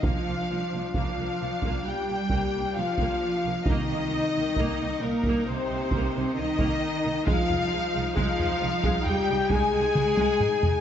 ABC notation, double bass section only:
X:1
M:4/4
L:1/16
Q:1/4=67
K:Cm
V:1 name="Double bass section" clef=bass
C,, C,, C,, C,, C,, C,, C,, C,, C,, C,, C,, C,, C,, C,, z C,, | C,, C,, C,, C,, C,, C,, C,, C,, C,, C,, C,, C,, C,, C,, z C,, | C,, C,, C,, C,, C,, C,, C,, C,, C,, C,, C,, C,, C,, C,, z C,, |]